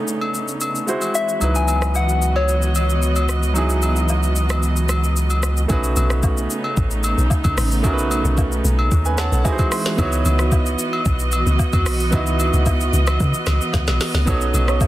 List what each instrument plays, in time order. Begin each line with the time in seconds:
Already playing: string section C#3 A3 B3 D#4, grand piano A3 C#4 D4 D#4 A4, downlifter
0.08 shaker
0.21 high agogo
0.35 shaker
0.48 shaker
0.61 high agogo, shaker
0.75 shaker
0.87 string section E3 G#3 C4 F#4, grand piano G#3 E4 F#4 C5, shaker
1.01 high agogo, shaker
1.15 soft synth lead E5, shaker
1.29 shaker
1.40 analog synth bass C#2, string section E3 B3 D#5, grand piano F#3 D#4 E4, high agogo, shaker
1.44 grand piano B4
1.55 soft synth lead G#5, shaker
1.68 high agogo, shaker
1.82 cross-stick, shaker
1.95 soft synth lead F#5, low woodblock, shaker
2.09 shaker
2.22 shaker
2.36 soft synth lead C#5, high agogo
2.49 shaker
2.62 shaker
2.75 high agogo, shaker
2.90 shaker
3.02 shaker
3.16 high agogo, shaker
3.29 cross-stick, shaker
3.43 shaker
3.54 grand piano F#3 D#4 E4, high agogo, shaker
3.58 grand piano G#4
3.70 shaker
3.82 high agogo, shaker
3.96 shaker
4.09 low woodblock, shaker
4.23 shaker
4.36 shaker
4.50 cross-stick, high agogo, shaker
4.63 shaker
4.76 shaker
4.89 cross-stick, high agogo, shaker
5.04 shaker
5.17 shaker
5.30 high agogo, shaker
5.43 cross-stick, shaker
5.57 shaker
5.68 log drum bass B1, string section C#3 A3 B3 D#4, grand piano A3 C#4 D#4 F#4 B4, kick, high agogo, shaker
5.84 shaker
5.96 log drum bass B1, high agogo, shaker
6.10 cross-stick, shaker
6.23 kick, low woodblock, shaker
6.37 shaker
6.50 shaker
6.64 high agogo
6.77 log drum bass A1, kick, shaker
6.91 shaker
7.04 high agogo, shaker
7.18 log drum bass B1, shaker
7.30 kick, low woodblock, shaker
7.44 log drum bass C#2, kick, high agogo, shaker
7.58 log drum bass A1, cross-stick, open hi-hat, shaker
7.72 shaker
7.83 log drum bass B1, grand piano A3 C#4 D#4 F#4 A#4, kick, high agogo, shaker
7.93 grand piano B4
7.98 shaker
8.11 high agogo, shaker
8.25 log drum bass B1, shaker
8.38 kick, low woodblock, shaker
8.52 shaker
8.64 log drum bass B1, shaker
8.79 high agogo
8.92 log drum bass D#2, kick, shaker
9.05 grand piano B4 G#5, shaker
9.18 grand piano C#5 F#5 A5, cross-stick, snare, high agogo, shaker
9.32 log drum bass B1, grand piano A4 F#5, shaker
9.44 string section E3 G#3 C4 F#4, grand piano G#3 D#4 E4 F#4 B4 G#5, kick, low woodblock, shaker
9.52 grand piano C5
9.59 kick, high agogo, shaker
9.72 grand piano C6, cross-stick, open hi-hat, shaker
9.86 snare, shaker
9.97 log drum bass C#2, grand piano B3 D#4 E4 F#4, string section B3 F#4 D#5, kick, high agogo, shaker
10.01 grand piano C#5
10.12 shaker
10.25 log drum bass C#2, high agogo, shaker
10.39 cross-stick, shaker
10.52 kick, low woodblock, shaker
10.66 shaker
10.79 shaker
10.93 high agogo
11.06 log drum bass B1, kick, shaker
11.19 shaker
11.32 high agogo, shaker
11.46 log drum bass C#2, shaker
11.59 kick, low woodblock, shaker
11.73 log drum bass E2, kick, high agogo, shaker
11.86 log drum bass B1, cross-stick, open hi-hat, shaker
12.00 shaker
12.11 log drum bass C#2, grand piano B3 D#4 E4 F#4, kick, high agogo, shaker
12.15 grand piano D#5
12.27 shaker
12.40 high agogo, shaker
12.54 log drum bass C#2, shaker
12.66 kick, low woodblock, shaker
12.81 shaker
12.93 log drum bass C#2, shaker
13.07 cross-stick, high agogo, shaker
13.20 log drum bass C#3, kick, shaker
13.34 shaker
13.47 log drum bass C#2, cross-stick, snare, high agogo, shaker
13.61 shaker
13.73 log drum bass C#2, kick, snare, low woodblock, shaker
13.87 log drum bass B1, snare, high agogo, shaker
14.01 snare, open hi-hat, shaker
14.14 log drum bass C#2, snare, shaker
14.25 log drum bass B1, string section C#3 A3, grand piano B3 D#4 F#4 A4 C#5, kick, high agogo, shaker
14.41 shaker
14.54 log drum bass B1, high agogo, shaker
14.68 synth stab D#4 A4 C#5, cross-stick, shaker
14.81 kick, low woodblock, shaker